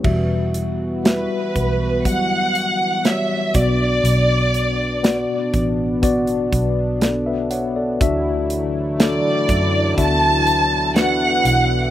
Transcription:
<<
  \new Staff \with { instrumentName = "Violin section" } { \time 4/4 \key e \dorian \tempo 4 = 61 r4 b'4 fis''4 e''8 d''8~ | d''4. r2 r8 | r4 d''4 a''4 fis''4 | }
  \new Staff \with { instrumentName = "Tine electric piano" } { \time 4/4 \key e \dorian << { r1 | r2. <a' d''>16 <b' e''>16 <cis'' fis''>16 <a' d''>16~ | <a' d''>16 r2. r8. | } \\ { <g fis' e''>4 <g fis' e''>4 <fis g fis''>4 <g fis' cis''>8 <b fis' d''>8~ | <b fis' d''>4 <b fis' d''>4 <b fis' d''>4 r4 | <d' fis' e''>4 <d' fis' a'>4 <d' fis' e''>4 <d' fis' b'>4 | } >> }
  \new Staff \with { instrumentName = "Tine electric piano" } { \clef bass \time 4/4 \key e \dorian e4. r2 b,8~ | b,4 r2. | d4. r2 r8 | }
  \new Staff \with { instrumentName = "Analog synth pad" } { \time 4/4 \key e \dorian << { <e fis'>2.~ <e fis'>8 d'8~ | d'1 | <d e fis e'>1 | } \\ { b2.~ b8 b8~ | b1 | a2 b2 | } >> }
  \new Staff \with { instrumentName = "Fingered electric bass" } { \clef bass \time 4/4 \key e \dorian e,,4~ e,,16 r16 b,,8 e,,4. b,,8 | b,,4~ b,,16 r16 a,,4 b,,4. | d,4~ d,16 r16 fis,8 d,4. b,,8 | }
  \new DrumStaff \with { instrumentName = "Drums" } \drummode { \time 4/4 <cymc bd>8 hh8 <hh sn>8 <hh bd>8 <hh bd>8 hh8 <hh sn>8 <hh bd>8 | hh8 hh8 <hh sn>8 <hh bd>8 <hh bd>16 hh16 <hh bd>8 <hh sn>8 hh8 | <hh bd>8 hh8 <hh sn>8 <hh bd>8 <hh bd>8 hh8 <hh sn>8 hh8 | }
>>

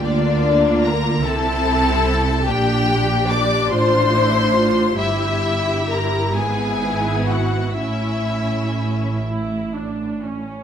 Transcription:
<<
  \new Staff \with { instrumentName = "Violin section" } { \time 6/8 \key a \phrygian \tempo 4. = 46 d''4 bes''8 a''4. | g''4 d'''8 c'''4. | e''4 bes''8 gis''4 fis''8 | e''4. r4. | }
  \new Staff \with { instrumentName = "Violin section" } { \time 6/8 \key a \phrygian d'4 bes'8 a'4. | g'4 d''8 c''4. | e'4 bes'8 gis'4 fis'8 | e'4. r4. | }
  \new Staff \with { instrumentName = "Viola section" } { \time 6/8 \key a \phrygian << { f'4. e'4. | g'4. f'8 e'8 f'8 | g'4. e'4. | e'4. e'8 d'8 cis'8 | } \\ { bes4. c'4. | d'2. | e'4. b4. | cis'4. r4. | } >> }
  \new Staff \with { instrumentName = "Cello section" } { \clef bass \time 6/8 \key a \phrygian d4. c4. | bes,4. a,4. | g,4. gis,4. | a,2~ a,8. r16 | }
  \new Staff \with { instrumentName = "Double bass section" } { \clef bass \time 6/8 \key a \phrygian d,4. c,4. | bes,,4. a,,4. | g,,4. gis,,4. | a,,2~ a,,8. r16 | }
>>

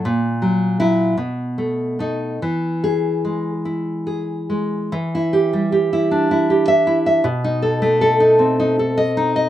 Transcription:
\new Staff \with { instrumentName = "Nylon-string guitar" } { \time 6/8 \key e \major \tempo 4. = 51 << { r4 e'8 r4 dis'8 | r8 gis'8. r4. r16 | \key e \minor r2 r16 e''8 r16 | r2 r16 dis''8 r16 | } \\ { ais,8 fis8 fis8 b,8 a8 a8 | e4 gis8 e'8 gis'8 gis8 | e16 e'16 g'16 g16 g'16 e'16 d'16 e'16 g'8 e'16 e''16 | b,16 dis'16 a'16 a16 a'16 dis'16 c'16 dis'16 a'8 dis'16 dis''16 | } >> }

